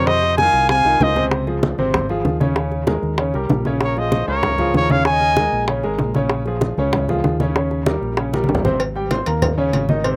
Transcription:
Already playing: fingered electric bass F2
0.06 grand piano C3 C4 C5, trumpet section C5 D#5, high bongo, high conga
0.22 high bongo, high conga
0.37 grand piano D#3 D#4 F4, trumpet section F5 G#5, high bongo, high conga
0.54 fingered electric bass C2, high conga
0.69 grand piano C3 C4 C5, trumpet section F5 G#5, high bongo, high conga
0.84 fingered electric bass C2, grand piano D#3 D#4 F4, high bongo, high conga
1.00 fingered electric bass C#2, trumpet section C5 D#5, high bongo, low bongo, high conga
1.16 grand piano C3 C4 C5, high bongo, high conga
1.31 high bongo, high conga
1.47 grand piano F3 F4 G#4, high bongo, high conga
1.63 high bongo, high conga
1.78 fingered electric bass G#1, grand piano C3 C4 C5, high conga
1.94 high bongo, high conga, low conga
2.09 grand piano F3 F4 G#4, high bongo, high conga
2.25 fingered electric bass D#2, high bongo, low bongo, high conga
2.40 grand piano C#3 C#4 C#5, high bongo, high conga
2.56 grand piano C#3 C#4 C#5, high bongo, high conga
2.72 high bongo, high conga
2.87 grand piano G#3 G#4 A#4, high bongo, high conga
3.02 fingered electric bass D#2, high conga
3.18 grand piano C#3 C#4 C#5, high bongo, high conga
3.34 fingered electric bass C2, grand piano G3 G4 A#4, high bongo, high conga
3.49 fingered electric bass A#1, high bongo, low bongo, high conga
3.65 grand piano C#3 C#4 C#5, high bongo, high conga
3.81 trumpet section A#4 C#5, high bongo, high conga
3.97 grand piano F3 F4 G#4, trumpet section C5 D#5, high bongo, high conga
4.12 high bongo, high conga
4.28 fingered electric bass C#2, grand piano C#3 C#4 C#5, trumpet section A#4 C#5, high conga
4.43 high bongo, high conga, low conga
4.58 grand piano F3 F4 G#4, high bongo, high conga, low conga
4.74 fingered electric bass D#2, trumpet section A#4 C#5, high bongo, low bongo, high conga
4.90 grand piano C#3 C#4 C#5, trumpet section C#5 F5, high bongo, high conga
5.05 grand piano C#3 C#4 C#5, trumpet section D#5 G#5, high bongo, high conga
5.21 high bongo, high conga
5.37 grand piano G#3 G#4 A#4, high bongo, high conga
5.52 fingered electric bass A#1, high conga
5.68 grand piano C#3 C#4 C#5, high bongo, high conga
5.83 fingered electric bass G#1, grand piano G#3 G#4 A#4, high bongo, high conga
5.99 fingered electric bass A#1, high bongo, low bongo, high conga
6.14 grand piano C#3 C#4 C#5, high bongo, high conga
6.30 high bongo, high conga
6.46 grand piano F3 F4 G#4, high bongo, high conga
6.61 high bongo, high conga
6.78 fingered electric bass C#2, grand piano C#3 C#4 C#5, high conga
6.93 high bongo, high conga, low conga
7.08 grand piano F3 F4 G#4, high bongo, high conga, low conga
7.24 fingered electric bass D#2, high bongo, low bongo, high conga
7.40 grand piano C#3 C#4 C#5, high bongo, high conga
7.56 grand piano C#3 C#4 C#5, high bongo, high conga
7.71 high bongo, high conga
7.86 grand piano G3 G4 A#4, high bongo, high conga
8.02 fingered electric bass A#1, high conga
8.17 grand piano C#3 C#4 C#5, high bongo, high conga
8.33 grand piano G3 G4 A#4, high bongo, high conga
8.44 high conga
8.48 fingered electric bass G#1, high bongo, low bongo
8.55 low conga
8.64 grand piano C3 C4 C5, high bongo, low conga
8.80 cowbell, high conga
8.95 grand piano G3 G4 G5, high conga
9.11 grand piano C4 C5 C6, cowbell, high conga
9.26 fingered electric bass D#2, grand piano A#3 A#4 A#5, cowbell, high conga
9.42 cowbell, high conga, low conga
9.58 grand piano C#3 C#4 C#5, high conga
9.73 fingered electric bass G#1, cowbell, high conga
9.89 grand piano D#3 D#4 D#5, high conga
10.04 grand piano C3 C4 C5, cowbell, high conga

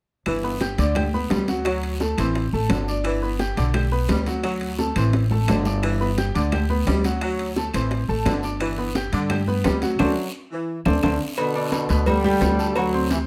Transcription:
0.26 upright bass G1, saxophone section E3, high bongo, high conga, high timbale, long guiro, claves
0.44 grand piano B3 B4 B5, high conga
0.61 grand piano G4 G5 G6, high bongo, high conga, high timbale, low timbale, short guiro
0.78 upright bass D2, saxophone section D3, grand piano D4 D5 D6, high conga, high timbale, short guiro
0.95 grand piano G4 G5 G6, high bongo, high conga, low conga, high timbale, long guiro, claves
1.13 grand piano B3 B4 B5, high conga, low conga
1.30 upright bass D2, saxophone section G3, high bongo, low bongo, high conga, high timbale, low timbale, short guiro
1.48 grand piano F#3 F#4 F#5, high conga, high timbale, short guiro
1.65 saxophone section F#3, grand piano F#3 F#4 F#5, high bongo, high timbale, long guiro, claves
1.83 high conga, high timbale
2.00 grand piano A3 A4 A5, high bongo, high conga, low timbale, short guiro
2.18 upright bass A1, saxophone section E3, grand piano C4 C5 C6, high bongo, high conga, high timbale, short guiro, claves
2.35 high bongo, high conga, high timbale, long guiro
2.52 upright bass A1, grand piano A3 A4 A5, high bongo, high conga
2.69 upright bass G1, saxophone section D3, high bongo, low bongo, high conga, high timbale, low timbale, short guiro, claves
2.87 grand piano D4 D5 D6, high bongo, high conga, short guiro
3.04 saxophone section E3, high bongo, high conga, high timbale, long guiro, claves
3.22 grand piano B3 B4 B5, high conga
3.39 grand piano G4 G5 G6, high bongo, high conga, high timbale, low timbale, short guiro
3.57 upright bass B1, saxophone section D3, grand piano D4 D5 D6, high conga, high timbale, short guiro
3.74 grand piano G4 G5 G6, high bongo, high conga, low conga, high timbale, long guiro, claves
3.91 grand piano B3 B4 B5, high conga
4.08 upright bass D2, saxophone section G3, high bongo, low bongo, high conga, high timbale, low timbale, short guiro
4.26 grand piano F#3 F#4 F#5, high conga, high timbale, short guiro
4.43 grand piano F#3 F#4 F#5, saxophone section F#3, high bongo, high conga, high timbale, long guiro, claves
4.61 high conga, high timbale
4.79 grand piano A3 A4 A5, high bongo, high conga, low timbale, short guiro
4.96 upright bass A1, saxophone section E3, grand piano C4 C5 C6, high bongo, high timbale, short guiro, claves
5.13 high bongo, high conga, high timbale, long guiro
5.31 grand piano A3 A4 A5, high bongo, low conga
5.48 upright bass G1, saxophone section D3, high bongo, low bongo, low conga, high timbale, low timbale, short guiro, claves
5.65 grand piano D4 D5 D6, high bongo, low conga, short guiro
5.83 saxophone section E3, high bongo, high conga, high timbale, long guiro, claves
6.00 grand piano B3 B4 B5, high conga
6.18 grand piano G4 G5 G6, high bongo, high conga, high timbale, low timbale, short guiro
6.34 upright bass D2, saxophone section D3, grand piano D4 D5 D6, high conga, high timbale, short guiro
6.52 grand piano G4 G5 G6, high bongo, high conga, low conga, high timbale, long guiro, claves
6.70 grand piano B3 B4 B5, high conga, low conga
6.87 upright bass D2, saxophone section G3, high bongo, low bongo, high conga, high timbale, low timbale, short guiro
7.04 grand piano F#3 F#4 F#5, high conga, high timbale, short guiro
7.21 grand piano F#3 F#4 F#5, saxophone section F#3, high bongo, high conga, high timbale, long guiro, claves
7.39 high conga, high timbale
7.56 grand piano A3 A4 A5, high bongo, high conga, low timbale, short guiro
7.74 upright bass A1, saxophone section E3, grand piano C4 C5 C6, high bongo, high conga, high timbale, short guiro, claves
7.91 high bongo, high conga, high timbale, long guiro
8.08 upright bass A1, grand piano A3 A4 A5, high bongo, high conga
8.25 upright bass G1, saxophone section D3, high bongo, low bongo, high conga, high timbale, low timbale, short guiro, claves
8.43 grand piano D4 D5 D6, high bongo, high conga, short guiro
8.60 saxophone section E3, high bongo, high conga, high timbale, long guiro, claves
8.78 grand piano B3 B4 B5, high conga
8.95 grand piano G4 G5 G6, high bongo, high conga, high timbale, low timbale, short guiro
9.12 upright bass G2, saxophone section D3, grand piano D4 D5 D6, high conga, high timbale, short guiro
9.30 grand piano G4 G5 G6, high bongo, high conga, low conga, high timbale, long guiro, claves
9.47 grand piano B3 B4 B5, high conga, low conga
9.64 upright bass D2, saxophone section G3, high bongo, low bongo, high conga, high timbale, low timbale, short guiro
9.82 grand piano F#3 F#4 F#5, high conga, high timbale, short guiro
9.99 upright bass D2, saxophone section F#3, grand piano A4 C5 D5, low bongo, high conga, high timbale, long guiro, claves
10.52 saxophone section E3
10.85 upright bass D2, grand piano A4 C5 D5, low bongo, high conga, high timbale, long guiro, claves
11.03 upright bass D2, saxophone section D3, grand piano A4 C5 D5, low bongo, high conga, high timbale, long guiro, claves
11.38 trombone section B2 D3, grand piano B3 B4 B5, cowbell, high conga, low agogo, long guiro, claves
11.55 grand piano D4 D5 D6, high conga, low agogo
11.72 cowbell, high conga, low timbale, low agogo, short guiro
11.89 upright bass D2, grand piano B3 B4 B5, cowbell, short guiro
12.06 trombone section D3 G3, cowbell, high conga, low conga, low agogo, long guiro, claves
12.24 grand piano G3 G4 G5, high conga, low conga
12.41 upright bass D2, cowbell, high conga, low timbale, low agogo, short guiro
12.59 grand piano A3 A4 A5, high conga, short guiro
12.76 trombone section D3 F#3, grand piano F#3 F#4 F#5, cowbell, high conga, low agogo, long guiro, claves
12.93 grand piano C4 C5 C6, high conga
13.10 trombone section C3 E3, cowbell, high conga, low timbale, low agogo, short guiro

